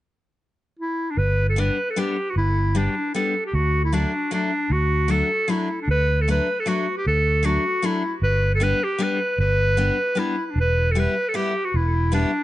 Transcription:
0.79 1.12 E4 medium
1.11 1.20 D4 medium
1.17 1.69 G1 medium
1.17 1.48 B4 medium
1.49 1.61 A4 medium
1.56 1.76 G3 soft
1.56 1.76 B3 soft
1.56 1.77 D4 medium
1.56 1.92 B4 medium
1.90 2.01 A4 medium
1.96 2.15 G3 medium
1.96 2.15 B3 medium
1.96 2.16 D4 medium
1.96 2.31 G4 medium
2.30 2.37 F#4 medium
2.36 2.87 G1 medium
2.36 2.79 E4 medium
2.75 2.94 G3 medium
2.75 2.94 B3 soft
2.75 2.94 D4 soft
2.75 3.15 D4 medium
3.15 3.33 G3 medium
3.15 3.33 B3 soft
3.15 3.34 D4 medium
3.15 3.43 A4 medium
3.46 3.56 G4 medium
3.54 4.04 D2 medium
3.54 3.84 F#4 medium
3.85 3.96 E4 medium
3.92 4.11 F#3 soft
3.92 4.11 A3 soft
3.92 4.12 D4 medium
3.92 4.32 D4 medium
4.31 4.50 F#3 medium
4.31 4.50 A3 soft
4.31 4.50 D4 medium
4.31 4.74 D4 medium
4.70 5.21 D2 medium
4.70 5.12 F#4 medium
5.08 5.28 F#3 soft
5.08 5.28 A3 soft
5.08 5.28 D4 medium
5.08 5.51 A4 medium
5.48 5.67 F#3 medium
5.48 5.68 A3 soft
5.48 5.68 D4 medium
5.48 5.80 E4 medium
5.82 5.89 D4 soft
5.88 6.39 D2 medium
5.88 6.23 B4 medium
6.21 6.29 A4 medium
6.28 6.47 F#3 soft
6.28 6.47 A3 soft
6.28 6.47 D4 medium
6.28 6.61 B4 medium
6.60 6.70 A4 medium
6.66 6.85 F#3 soft
6.66 6.85 A3 soft
6.66 6.86 D4 medium
6.66 6.97 F#4 medium
6.98 7.06 G4 medium
7.07 7.57 D2 medium
7.07 7.47 A4 medium
7.43 7.62 F#3 soft
7.43 7.63 A3 soft
7.43 7.63 D4 medium
7.43 7.87 F#4 medium
7.82 8.02 F#3 medium
7.82 8.02 A3 soft
7.82 8.02 D4 medium
7.82 8.14 E4 medium
8.22 8.72 G1 medium
8.22 8.50 B4 medium
8.55 8.64 A4 medium
8.60 8.79 G3 soft
8.60 8.79 B3 soft
8.60 8.80 D4 medium
8.60 8.85 B4 medium
8.84 9.04 G4 medium
8.99 9.18 G3 medium
8.99 9.18 B3 soft
8.99 9.18 D4 medium
9.03 9.40 B4 medium
9.38 9.89 G1 medium
9.38 10.20 B4 medium
9.77 9.96 G3 soft
9.77 9.96 B3 soft
9.77 9.97 D4 medium
10.15 10.35 G3 soft
10.15 10.35 B3 soft
10.15 10.35 D4 medium
10.15 10.46 E4 medium
10.46 10.52 E4 soft
10.51 10.58 D4 medium
10.56 11.06 E1 medium
10.61 10.92 B4 medium
10.91 11.01 A4 medium
10.95 11.14 G3 soft
10.95 11.14 B3 soft
10.95 11.14 E4 soft
10.99 11.30 B4 medium
11.29 11.37 A4 medium
11.34 11.52 G3 medium
11.34 11.52 B3 soft
11.34 11.53 E4 medium
11.34 11.66 G4 medium
11.65 11.78 F#4 medium
11.74 12.24 E1 medium
11.74 12.13 E4 medium
12.12 12.30 G3 soft
12.12 12.30 B3 medium
12.12 12.43 D4 medium
12.12 12.30 E4 soft

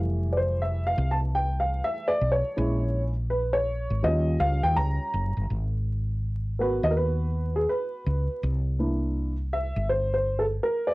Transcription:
0.00 0.94 F1 loud
0.00 2.53 E3 medium
0.00 2.52 G3 medium
0.00 2.53 A3 soft
0.33 0.37 D5 medium
0.37 0.63 C5 medium
0.62 0.85 E5 medium
0.87 1.12 F5 medium
0.98 1.80 C2 medium
1.11 1.17 A5 medium
1.35 1.60 G5 medium
1.60 1.85 F5 medium
1.84 2.09 E5 medium
2.08 2.33 D5 medium
2.21 2.42 B1 medium
2.32 3.01 C#5 medium
2.56 3.86 A#1 loud
2.56 3.09 G#3 medium
2.56 3.09 C#4 soft
2.56 3.10 E4 medium
3.30 3.54 B4 medium
3.53 4.05 C#5 loud
3.90 4.02 G#1 medium
4.03 4.36 D#2 loud
4.03 5.45 G3 soft
4.03 5.46 C#4 medium
4.03 5.46 F4 medium
4.03 4.38 D#5 medium
4.40 4.61 C#2 loud
4.40 4.64 F5 loud
4.63 4.75 D#2 medium
4.63 4.77 G5 loud
4.76 4.97 C#2 loud
4.76 5.46 A#5 loud
5.14 5.34 F#1 loud
5.37 5.49 G1 medium
5.50 6.79 G#1 medium
6.59 8.39 B3 soft
6.59 8.39 F#4 medium
6.59 6.89 A#4 medium
6.59 6.84 B4 medium
6.83 7.66 D#2 medium
6.83 6.92 D#5 loud
6.91 6.96 A#4 medium
6.97 7.58 B4 medium
7.56 7.68 G#4 medium
7.69 8.39 B4 medium
8.06 8.27 C#2 medium
8.43 9.72 C2 loud
8.79 9.31 A#3 soft
8.79 9.32 D4 soft
8.79 9.32 E4 medium
9.53 9.87 E5 medium
9.76 10.59 G1 medium
9.90 10.12 C5 medium
10.14 10.39 C5 medium
10.39 10.44 A4 medium
10.63 10.88 A#4 medium
10.87 10.94 D5 medium

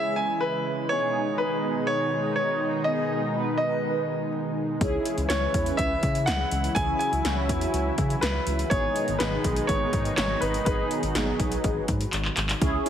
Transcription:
0.00 0.87 C#3 medium
0.00 0.87 E3 medium
0.00 6.72 G#3 medium
0.00 0.15 C#4 medium
0.00 0.15 E4 medium
0.00 0.87 E4 medium
0.00 0.15 G#4 medium
0.00 0.18 E5 loud
0.16 0.42 G#5 loud
0.40 0.92 B4 medium
0.89 4.77 B2 medium
0.89 4.77 D#3 medium
0.89 1.26 B3 medium
0.89 1.26 D#4 medium
0.89 4.77 D#4 medium
0.89 1.26 G#4 medium
0.89 1.40 C#5 loud
1.38 2.10 B3 medium
1.38 2.10 D#4 medium
1.38 2.10 G#4 medium
1.38 1.89 B4 medium
1.87 2.33 C#5 loud
2.36 2.87 C#5 medium
2.84 3.21 B3 medium
2.84 3.21 D#4 medium
2.84 3.21 G#4 medium
2.84 3.56 D#5 loud
3.35 4.05 B3 medium
3.35 4.05 D#4 medium
3.35 4.05 B4 medium
3.58 4.28 D#5 medium
4.81 4.98 C#2 loud
4.81 8.67 C#3 medium
4.81 8.67 E3 medium
4.81 5.16 C#4 medium
4.81 8.67 E4 medium
4.81 5.16 E4 medium
4.81 5.16 G#4 loud
4.81 kick loud
4.81 closed hi-hat medium
5.05 closed hi-hat medium
5.18 5.26 C#2 medium
5.18 closed hi-hat medium
5.29 5.47 C#2 loud
5.29 6.00 C#4 medium
5.29 6.00 E4 medium
5.29 6.00 B4 medium
5.29 5.75 C#5 medium
5.29 snare loud
5.29 closed hi-hat medium
5.54 5.71 E2 loud
5.54 kick medium
5.54 closed hi-hat medium
5.66 closed hi-hat medium
5.77 5.96 C#2 loud
5.77 6.28 E5 loud
5.77 kick medium
5.77 closed hi-hat medium
6.03 6.29 C#3 loud
6.03 kick loud
6.03 closed hi-hat medium
6.15 closed hi-hat medium
6.26 6.45 C#2 loud
6.26 6.77 F#5 loud
6.26 snare loud
6.26 closed hi-hat medium
6.51 6.69 C#2 loud
6.51 closed hi-hat medium
6.64 closed hi-hat medium
6.75 6.93 C#2 loud
6.75 8.69 F#3 medium
6.75 7.11 C#4 medium
6.75 7.11 E4 medium
6.75 7.11 G#4 medium
6.75 6.98 G#5 loud
6.75 kick loud
6.75 closed hi-hat medium
6.99 8.26 G#5 loud
6.99 closed hi-hat medium
7.13 7.21 C#2 loud
7.13 closed hi-hat medium
7.25 7.51 C#2 loud
7.25 7.95 C#4 medium
7.25 7.95 E4 medium
7.25 7.95 F#4 medium
7.25 snare loud
7.25 closed hi-hat medium
7.49 7.66 E2 loud
7.49 kick medium
7.49 closed hi-hat medium
7.61 closed hi-hat medium
7.74 7.91 C#2 loud
7.74 closed hi-hat medium
7.98 8.15 C#3 loud
7.98 kick loud
7.98 closed hi-hat medium
8.10 closed hi-hat medium
8.21 8.40 C#2 loud
8.21 8.72 B4 medium
8.21 snare loud
8.21 closed hi-hat medium
8.47 8.64 C#2 loud
8.47 closed hi-hat medium
8.59 closed hi-hat medium
8.70 8.88 G#1 loud
8.70 12.58 B2 medium
8.70 12.58 D#3 medium
8.70 10.64 G#3 medium
8.70 9.06 B3 medium
8.70 12.58 D#4 medium
8.70 9.06 D#4 medium
8.70 9.06 G#4 medium
8.70 9.16 C#5 loud
8.70 kick loud
8.70 closed hi-hat medium
8.96 closed hi-hat medium
9.08 9.16 G#1 loud
9.08 closed hi-hat medium
9.19 9.37 G#1 loud
9.19 9.90 B3 medium
9.19 9.90 D#4 medium
9.19 9.90 G#4 medium
9.19 9.70 B4 medium
9.19 snare loud
9.19 closed hi-hat medium
9.44 9.62 B1 loud
9.44 kick medium
9.44 closed hi-hat medium
9.56 closed hi-hat medium
9.67 9.86 G#1 loud
9.67 10.15 C#5 loud
9.67 kick medium
9.67 closed hi-hat medium
9.93 10.10 G#2 loud
9.93 kick loud
9.93 closed hi-hat medium
10.05 closed hi-hat medium
10.16 10.35 G#1 loud
10.16 10.42 C#5 medium
10.16 snare loud
10.16 clap medium
10.16 closed hi-hat medium
10.41 10.59 G#1 loud
10.41 10.64 B4 medium
10.41 closed hi-hat medium
10.54 closed hi-hat medium
10.65 10.83 G#1 loud
10.65 12.60 F#3 medium
10.65 11.02 B3 medium
10.65 11.01 D#4 medium
10.65 11.01 G#4 medium
10.65 12.08 B4 medium
10.65 kick loud
10.65 closed hi-hat medium
10.91 closed hi-hat medium
11.03 11.12 G#1 loud
11.03 closed hi-hat medium
11.15 11.32 G#1 loud
11.15 11.85 B3 medium
11.15 11.85 D#4 medium
11.15 11.85 G#4 medium
11.15 snare loud
11.15 closed hi-hat medium
11.40 11.57 B1 loud
11.40 kick medium
11.40 closed hi-hat medium
11.52 closed hi-hat medium
11.64 11.81 G#1 loud
11.64 kick medium
11.64 closed hi-hat medium
11.88 12.06 G#2 loud
11.88 kick medium
11.88 closed hi-hat medium
12.01 closed hi-hat medium
12.13 12.30 G#1 loud
12.13 clap medium
12.13 closed hi-hat medium
12.25 clap medium
12.37 12.54 G#1 loud
12.37 clap medium
12.37 closed hi-hat medium
12.49 clap medium
12.49 closed hi-hat medium
12.62 12.79 C#2 loud
12.62 12.89 C#4 loud
12.62 12.89 E4 medium
12.62 12.75 E4 medium
12.62 12.89 G#4 loud
12.62 kick loud
12.62 closed hi-hat medium
12.86 12.89 E4 medium
12.86 closed hi-hat medium

